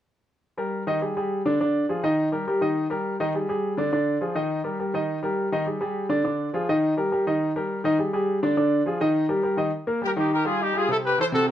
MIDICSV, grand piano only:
0, 0, Header, 1, 2, 480
1, 0, Start_track
1, 0, Key_signature, -3, "major"
1, 0, Tempo, 290416
1, 717, Time_signature, 4, 2, 24, 8
1, 19024, End_track
2, 0, Start_track
2, 0, Title_t, "Grand piano"
2, 0, Program_c, 0, 0
2, 950, Note_on_c, 0, 55, 66
2, 955, Note_on_c, 0, 67, 66
2, 958, Note_on_c, 0, 70, 69
2, 1347, Note_off_c, 0, 55, 0
2, 1350, Note_off_c, 0, 67, 0
2, 1352, Note_off_c, 0, 70, 0
2, 1437, Note_on_c, 0, 51, 82
2, 1442, Note_on_c, 0, 63, 80
2, 1451, Note_on_c, 0, 75, 75
2, 1635, Note_off_c, 0, 51, 0
2, 1637, Note_off_c, 0, 63, 0
2, 1643, Note_off_c, 0, 75, 0
2, 1677, Note_on_c, 0, 55, 59
2, 1685, Note_on_c, 0, 68, 59
2, 1686, Note_on_c, 0, 67, 62
2, 1875, Note_off_c, 0, 55, 0
2, 1879, Note_off_c, 0, 68, 0
2, 1880, Note_off_c, 0, 67, 0
2, 1928, Note_on_c, 0, 55, 68
2, 1929, Note_on_c, 0, 68, 64
2, 1932, Note_on_c, 0, 67, 65
2, 2318, Note_off_c, 0, 55, 0
2, 2319, Note_off_c, 0, 68, 0
2, 2321, Note_off_c, 0, 67, 0
2, 2405, Note_on_c, 0, 50, 77
2, 2408, Note_on_c, 0, 62, 77
2, 2411, Note_on_c, 0, 74, 73
2, 2599, Note_off_c, 0, 50, 0
2, 2601, Note_off_c, 0, 62, 0
2, 2603, Note_off_c, 0, 74, 0
2, 2647, Note_on_c, 0, 50, 65
2, 2654, Note_on_c, 0, 62, 71
2, 2661, Note_on_c, 0, 74, 73
2, 3038, Note_off_c, 0, 50, 0
2, 3042, Note_off_c, 0, 62, 0
2, 3046, Note_off_c, 0, 74, 0
2, 3124, Note_on_c, 0, 53, 61
2, 3131, Note_on_c, 0, 65, 61
2, 3133, Note_on_c, 0, 68, 64
2, 3319, Note_off_c, 0, 53, 0
2, 3323, Note_off_c, 0, 65, 0
2, 3324, Note_off_c, 0, 68, 0
2, 3363, Note_on_c, 0, 51, 76
2, 3365, Note_on_c, 0, 63, 82
2, 3369, Note_on_c, 0, 75, 84
2, 3755, Note_off_c, 0, 51, 0
2, 3756, Note_off_c, 0, 63, 0
2, 3759, Note_off_c, 0, 75, 0
2, 3834, Note_on_c, 0, 55, 68
2, 3839, Note_on_c, 0, 67, 71
2, 3844, Note_on_c, 0, 70, 68
2, 4033, Note_off_c, 0, 55, 0
2, 4036, Note_off_c, 0, 67, 0
2, 4039, Note_off_c, 0, 70, 0
2, 4092, Note_on_c, 0, 67, 65
2, 4093, Note_on_c, 0, 55, 66
2, 4096, Note_on_c, 0, 70, 64
2, 4284, Note_off_c, 0, 55, 0
2, 4284, Note_off_c, 0, 67, 0
2, 4286, Note_off_c, 0, 70, 0
2, 4316, Note_on_c, 0, 51, 77
2, 4325, Note_on_c, 0, 63, 72
2, 4328, Note_on_c, 0, 75, 71
2, 4711, Note_off_c, 0, 51, 0
2, 4717, Note_off_c, 0, 63, 0
2, 4718, Note_off_c, 0, 75, 0
2, 4791, Note_on_c, 0, 55, 72
2, 4800, Note_on_c, 0, 67, 71
2, 4805, Note_on_c, 0, 70, 73
2, 5189, Note_off_c, 0, 55, 0
2, 5194, Note_off_c, 0, 67, 0
2, 5197, Note_off_c, 0, 70, 0
2, 5290, Note_on_c, 0, 51, 83
2, 5290, Note_on_c, 0, 63, 82
2, 5298, Note_on_c, 0, 75, 75
2, 5483, Note_off_c, 0, 51, 0
2, 5483, Note_off_c, 0, 63, 0
2, 5488, Note_off_c, 0, 75, 0
2, 5529, Note_on_c, 0, 55, 61
2, 5539, Note_on_c, 0, 67, 59
2, 5541, Note_on_c, 0, 68, 58
2, 5722, Note_off_c, 0, 55, 0
2, 5728, Note_off_c, 0, 67, 0
2, 5729, Note_off_c, 0, 68, 0
2, 5763, Note_on_c, 0, 55, 64
2, 5768, Note_on_c, 0, 67, 68
2, 5771, Note_on_c, 0, 68, 69
2, 6156, Note_off_c, 0, 55, 0
2, 6159, Note_off_c, 0, 67, 0
2, 6161, Note_off_c, 0, 68, 0
2, 6238, Note_on_c, 0, 50, 81
2, 6249, Note_on_c, 0, 62, 73
2, 6252, Note_on_c, 0, 74, 78
2, 6436, Note_off_c, 0, 50, 0
2, 6442, Note_off_c, 0, 62, 0
2, 6444, Note_off_c, 0, 74, 0
2, 6486, Note_on_c, 0, 50, 73
2, 6488, Note_on_c, 0, 62, 70
2, 6492, Note_on_c, 0, 74, 72
2, 6877, Note_off_c, 0, 50, 0
2, 6878, Note_off_c, 0, 62, 0
2, 6881, Note_off_c, 0, 74, 0
2, 6956, Note_on_c, 0, 65, 61
2, 6960, Note_on_c, 0, 53, 62
2, 6967, Note_on_c, 0, 68, 59
2, 7155, Note_off_c, 0, 65, 0
2, 7157, Note_off_c, 0, 53, 0
2, 7161, Note_off_c, 0, 68, 0
2, 7193, Note_on_c, 0, 51, 79
2, 7198, Note_on_c, 0, 63, 78
2, 7200, Note_on_c, 0, 75, 77
2, 7590, Note_off_c, 0, 51, 0
2, 7593, Note_off_c, 0, 63, 0
2, 7594, Note_off_c, 0, 75, 0
2, 7670, Note_on_c, 0, 55, 67
2, 7671, Note_on_c, 0, 67, 65
2, 7679, Note_on_c, 0, 70, 62
2, 7871, Note_off_c, 0, 55, 0
2, 7872, Note_off_c, 0, 67, 0
2, 7876, Note_off_c, 0, 70, 0
2, 7925, Note_on_c, 0, 55, 59
2, 7930, Note_on_c, 0, 67, 61
2, 7932, Note_on_c, 0, 70, 58
2, 8120, Note_off_c, 0, 55, 0
2, 8123, Note_off_c, 0, 67, 0
2, 8124, Note_off_c, 0, 70, 0
2, 8163, Note_on_c, 0, 51, 74
2, 8169, Note_on_c, 0, 63, 76
2, 8177, Note_on_c, 0, 75, 76
2, 8556, Note_off_c, 0, 51, 0
2, 8559, Note_off_c, 0, 63, 0
2, 8564, Note_off_c, 0, 75, 0
2, 8637, Note_on_c, 0, 55, 71
2, 8650, Note_on_c, 0, 67, 67
2, 8655, Note_on_c, 0, 70, 70
2, 9032, Note_off_c, 0, 55, 0
2, 9040, Note_off_c, 0, 67, 0
2, 9043, Note_off_c, 0, 70, 0
2, 9127, Note_on_c, 0, 51, 78
2, 9133, Note_on_c, 0, 63, 81
2, 9140, Note_on_c, 0, 75, 75
2, 9322, Note_off_c, 0, 51, 0
2, 9325, Note_off_c, 0, 63, 0
2, 9329, Note_off_c, 0, 75, 0
2, 9364, Note_on_c, 0, 55, 60
2, 9365, Note_on_c, 0, 67, 54
2, 9375, Note_on_c, 0, 68, 57
2, 9560, Note_off_c, 0, 55, 0
2, 9560, Note_off_c, 0, 67, 0
2, 9566, Note_off_c, 0, 68, 0
2, 9596, Note_on_c, 0, 55, 69
2, 9605, Note_on_c, 0, 67, 71
2, 9611, Note_on_c, 0, 68, 67
2, 9992, Note_off_c, 0, 55, 0
2, 9997, Note_off_c, 0, 67, 0
2, 10001, Note_off_c, 0, 68, 0
2, 10070, Note_on_c, 0, 50, 74
2, 10072, Note_on_c, 0, 62, 77
2, 10078, Note_on_c, 0, 74, 79
2, 10272, Note_off_c, 0, 50, 0
2, 10273, Note_off_c, 0, 62, 0
2, 10276, Note_off_c, 0, 74, 0
2, 10315, Note_on_c, 0, 50, 69
2, 10323, Note_on_c, 0, 62, 72
2, 10326, Note_on_c, 0, 74, 69
2, 10711, Note_off_c, 0, 50, 0
2, 10716, Note_off_c, 0, 62, 0
2, 10717, Note_off_c, 0, 74, 0
2, 10801, Note_on_c, 0, 53, 64
2, 10808, Note_on_c, 0, 65, 68
2, 10815, Note_on_c, 0, 68, 68
2, 10998, Note_off_c, 0, 53, 0
2, 11002, Note_off_c, 0, 65, 0
2, 11006, Note_off_c, 0, 68, 0
2, 11057, Note_on_c, 0, 51, 80
2, 11059, Note_on_c, 0, 63, 80
2, 11062, Note_on_c, 0, 75, 83
2, 11444, Note_off_c, 0, 51, 0
2, 11445, Note_off_c, 0, 63, 0
2, 11446, Note_off_c, 0, 75, 0
2, 11520, Note_on_c, 0, 55, 66
2, 11527, Note_on_c, 0, 67, 67
2, 11533, Note_on_c, 0, 70, 70
2, 11717, Note_off_c, 0, 55, 0
2, 11722, Note_off_c, 0, 67, 0
2, 11725, Note_off_c, 0, 70, 0
2, 11768, Note_on_c, 0, 67, 65
2, 11770, Note_on_c, 0, 55, 65
2, 11773, Note_on_c, 0, 70, 64
2, 11961, Note_off_c, 0, 67, 0
2, 11963, Note_off_c, 0, 55, 0
2, 11964, Note_off_c, 0, 70, 0
2, 12012, Note_on_c, 0, 51, 78
2, 12017, Note_on_c, 0, 75, 72
2, 12018, Note_on_c, 0, 63, 72
2, 12401, Note_off_c, 0, 51, 0
2, 12404, Note_off_c, 0, 63, 0
2, 12404, Note_off_c, 0, 75, 0
2, 12494, Note_on_c, 0, 55, 67
2, 12495, Note_on_c, 0, 67, 74
2, 12499, Note_on_c, 0, 70, 67
2, 12882, Note_off_c, 0, 55, 0
2, 12883, Note_off_c, 0, 67, 0
2, 12885, Note_off_c, 0, 70, 0
2, 12960, Note_on_c, 0, 51, 88
2, 12972, Note_on_c, 0, 75, 79
2, 12974, Note_on_c, 0, 63, 87
2, 13157, Note_off_c, 0, 51, 0
2, 13164, Note_off_c, 0, 75, 0
2, 13165, Note_off_c, 0, 63, 0
2, 13203, Note_on_c, 0, 55, 62
2, 13205, Note_on_c, 0, 67, 58
2, 13206, Note_on_c, 0, 68, 59
2, 13399, Note_off_c, 0, 55, 0
2, 13400, Note_off_c, 0, 67, 0
2, 13400, Note_off_c, 0, 68, 0
2, 13440, Note_on_c, 0, 55, 67
2, 13446, Note_on_c, 0, 67, 69
2, 13449, Note_on_c, 0, 68, 71
2, 13833, Note_off_c, 0, 55, 0
2, 13837, Note_off_c, 0, 67, 0
2, 13839, Note_off_c, 0, 68, 0
2, 13928, Note_on_c, 0, 50, 76
2, 13931, Note_on_c, 0, 62, 82
2, 13938, Note_on_c, 0, 74, 78
2, 14121, Note_off_c, 0, 50, 0
2, 14123, Note_off_c, 0, 62, 0
2, 14127, Note_off_c, 0, 74, 0
2, 14165, Note_on_c, 0, 50, 74
2, 14168, Note_on_c, 0, 62, 72
2, 14172, Note_on_c, 0, 74, 70
2, 14556, Note_off_c, 0, 50, 0
2, 14558, Note_off_c, 0, 62, 0
2, 14560, Note_off_c, 0, 74, 0
2, 14640, Note_on_c, 0, 53, 65
2, 14651, Note_on_c, 0, 65, 66
2, 14658, Note_on_c, 0, 68, 67
2, 14837, Note_off_c, 0, 53, 0
2, 14843, Note_off_c, 0, 65, 0
2, 14847, Note_off_c, 0, 68, 0
2, 14884, Note_on_c, 0, 51, 85
2, 14892, Note_on_c, 0, 63, 80
2, 14892, Note_on_c, 0, 75, 86
2, 15275, Note_off_c, 0, 51, 0
2, 15280, Note_off_c, 0, 63, 0
2, 15280, Note_off_c, 0, 75, 0
2, 15352, Note_on_c, 0, 55, 70
2, 15355, Note_on_c, 0, 67, 66
2, 15356, Note_on_c, 0, 70, 62
2, 15552, Note_off_c, 0, 55, 0
2, 15554, Note_off_c, 0, 67, 0
2, 15554, Note_off_c, 0, 70, 0
2, 15587, Note_on_c, 0, 55, 67
2, 15591, Note_on_c, 0, 67, 64
2, 15596, Note_on_c, 0, 70, 66
2, 15788, Note_off_c, 0, 55, 0
2, 15791, Note_off_c, 0, 67, 0
2, 15794, Note_off_c, 0, 70, 0
2, 15817, Note_on_c, 0, 51, 76
2, 15827, Note_on_c, 0, 63, 76
2, 15831, Note_on_c, 0, 75, 72
2, 16023, Note_off_c, 0, 51, 0
2, 16028, Note_off_c, 0, 63, 0
2, 16031, Note_off_c, 0, 75, 0
2, 16314, Note_on_c, 0, 58, 74
2, 16317, Note_on_c, 0, 70, 70
2, 16513, Note_off_c, 0, 58, 0
2, 16514, Note_off_c, 0, 70, 0
2, 16554, Note_on_c, 0, 55, 67
2, 16555, Note_on_c, 0, 67, 63
2, 16752, Note_off_c, 0, 55, 0
2, 16753, Note_off_c, 0, 67, 0
2, 16800, Note_on_c, 0, 51, 84
2, 16806, Note_on_c, 0, 63, 79
2, 17192, Note_off_c, 0, 51, 0
2, 17196, Note_off_c, 0, 63, 0
2, 17269, Note_on_c, 0, 55, 70
2, 17274, Note_on_c, 0, 67, 70
2, 17666, Note_off_c, 0, 55, 0
2, 17669, Note_off_c, 0, 67, 0
2, 17744, Note_on_c, 0, 55, 68
2, 17750, Note_on_c, 0, 67, 66
2, 17946, Note_off_c, 0, 55, 0
2, 17950, Note_off_c, 0, 67, 0
2, 17988, Note_on_c, 0, 48, 66
2, 17988, Note_on_c, 0, 60, 69
2, 18385, Note_off_c, 0, 48, 0
2, 18385, Note_off_c, 0, 60, 0
2, 18483, Note_on_c, 0, 64, 65
2, 18484, Note_on_c, 0, 52, 64
2, 18677, Note_off_c, 0, 64, 0
2, 18678, Note_off_c, 0, 52, 0
2, 18711, Note_on_c, 0, 48, 82
2, 18716, Note_on_c, 0, 60, 87
2, 19024, Note_off_c, 0, 48, 0
2, 19024, Note_off_c, 0, 60, 0
2, 19024, End_track
0, 0, End_of_file